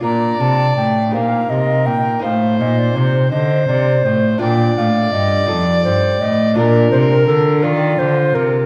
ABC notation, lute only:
X:1
M:6/8
L:1/8
Q:3/8=55
K:Bb
V:1 name="Lute"
[DFB]3 [EGc]3 | [EFc]6 | [DFB]3 [EFA]3 | [DFB]6 |]
V:2 name="Lute" clef=bass
B,, C, A,, B,, C, B,, | A,, B,, C, D, C, A,, | B,, A,, G,, F,, G,, A,, | B,, C, D, E, D, C, |]